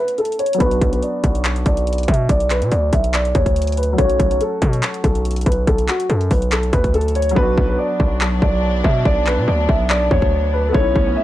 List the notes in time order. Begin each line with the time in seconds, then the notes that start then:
Already playing: A3 B3 C#4 E4 B4
0.08 closed hi-hat
0.18 A4, closed hi-hat
0.25 closed hi-hat
0.32 closed hi-hat
0.39 C#5, closed hi-hat
0.46 closed hi-hat
0.53 F#3, closed hi-hat
0.58 B1 B3 D4 B4, kick, closed hi-hat
0.66 F#4
0.71 closed hi-hat
0.81 B1, kick, closed hi-hat
0.93 B4, closed hi-hat
1.02 D5, closed hi-hat
1.24 B1, kick, closed hi-hat
1.35 closed hi-hat
1.45 clap, closed hi-hat
1.56 closed hi-hat
1.66 B1 D5, kick, closed hi-hat
1.77 closed hi-hat
1.87 closed hi-hat
1.93 closed hi-hat
1.98 closed hi-hat
2.03 closed hi-hat
2.08 B2 E5, kick, closed hi-hat
2.14 closed hi-hat
2.29 B1 D5, kick, closed hi-hat
2.40 closed hi-hat
2.50 B4, clap, closed hi-hat
2.62 B2, closed hi-hat
2.72 D2 D5, closed hi-hat
2.93 B1 E5, kick, closed hi-hat
3.04 closed hi-hat
3.14 D5, clap, closed hi-hat
3.25 closed hi-hat
3.35 D2 C#5, kick, closed hi-hat
3.46 kick, closed hi-hat
3.56 closed hi-hat
3.62 closed hi-hat
3.67 closed hi-hat
3.72 closed hi-hat
3.77 B4, closed hi-hat
3.83 closed hi-hat
3.93 F#3 A3
3.98 B1 C#4 C#5, kick, closed hi-hat
4.04 F#4
4.09 closed hi-hat
4.20 B1, kick, closed hi-hat
4.31 C#5, closed hi-hat
4.41 A4, closed hi-hat
4.62 B2, kick, closed hi-hat
4.73 closed hi-hat
4.83 clap, closed hi-hat
4.94 closed hi-hat
5.04 B1 A4, kick, closed hi-hat
5.15 closed hi-hat
5.25 closed hi-hat
5.31 closed hi-hat
5.36 closed hi-hat
5.41 closed hi-hat
5.46 B1 B4, kick, closed hi-hat
5.52 closed hi-hat
5.67 B1 A4, kick, closed hi-hat
5.78 closed hi-hat
5.88 F#4, clap, closed hi-hat
6.00 closed hi-hat
6.10 F#2 A4, closed hi-hat
6.21 closed hi-hat
6.31 B1 B4, kick, open hi-hat
6.42 closed hi-hat
6.52 A4, clap, closed hi-hat
6.63 closed hi-hat
6.73 D2 B4, kick, closed hi-hat
6.84 kick, closed hi-hat
6.94 A4, closed hi-hat
7.01 closed hi-hat
7.08 closed hi-hat
7.15 C#5, closed hi-hat
7.22 closed hi-hat
7.29 F#3, closed hi-hat
7.35 B1 F#3 B3 D4 B4, kick
7.42 F#4
7.58 B1, kick
7.69 B4
7.79 D5
8.00 B1, kick
8.21 clap
8.42 B1 D5, kick
8.84 B2 E5, kick
9.05 B1 D5, kick
9.27 B4, clap
9.38 B2
9.48 D2 D5
9.69 B1 E5, kick
9.90 D5, clap
10.11 D2 C#5, kick
10.22 kick
10.53 B4
10.68 A3 B3
10.74 B1 A3 C#4 C#5, kick
10.80 E4
10.96 B1, kick
11.07 C#5
11.17 E5